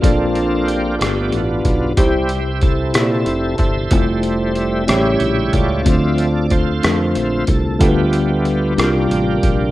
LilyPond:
<<
  \new Staff \with { instrumentName = "Tonewheel organ" } { \time 6/8 \key c \mixolydian \tempo 4. = 62 <d' f' a'>4 <d' g'>4 <b d' f'>4 | g'4 <c' e' a'>4. <a' c'' e''>8~ | <a' c'' e''>4 e''8 <g' cis'' e''>4 <f' a' d''>8~ | <f' a' d''>4 <f' a' c''>4. a'8 |
<g g'>2. | }
  \new Staff \with { instrumentName = "Tonewheel organ" } { \time 6/8 \key c \mixolydian <bes c'>4. <a b f'>8 r4 | <g c' e'>8 r2 r8 | <g a c'>4. <cis g e'>4. | <f c' e''>8 r4. <f c' e''>8 r8 |
<a b f'>4. <bes d' f'>4. | }
  \new Staff \with { instrumentName = "Tine electric piano" } { \time 6/8 \key c \mixolydian <bes d' f' a' d''>4 r8 <a b d' f' g' d''>4 r8 | <ees' e' g' c''>4 r8 <e' g' d''>4 r8 | <a c' e' f' c''>4 r8 <a cis' e' g' c'' cis''>4 r8 | <a c' d' f' c''>4 r8 <a c' d' f' bes' c''>4 r8 |
<g b d' f' a' b'>4 r8 <g c' d' f' bes'>4 r8 | }
  \new Staff \with { instrumentName = "Tine electric piano" } { \clef bass \time 6/8 \key c \mixolydian bes,4. g,4. | c4. r4. | r4. a,4. | d4. r4. |
d4. c4. | }
  \new Staff \with { instrumentName = "Fingered electric bass" } { \clef bass \time 6/8 \key c \mixolydian bes,,4. g,,8 a,,8 b,,8 | c,4. bes,8 f,,8 g,,8 | f,,4. a,,8 bes,,8 cis,8 | d,4. f,8 bes,,8 c,8 |
d,4. c,8 a,,8 bes,,8 | }
  \new DrumStaff \with { instrumentName = "Drums" } \drummode { \time 6/8 <hh bd>8 hh8 hh8 <hh ss>8 hh8 <hh bd>8 | <hh bd>8 hh8 <hh bd>8 <hh ss>8 hh8 <hh bd>8 | <hh bd>8 hh8 hh8 <hh ss>8 hh8 <hh bd>8 | <hh bd>8 hh8 <hh bd>8 <hh ss>8 hh8 <hh bd>8 |
<hh bd>8 hh8 hh8 <hh ss>8 hh8 <hh bd>8 | }
>>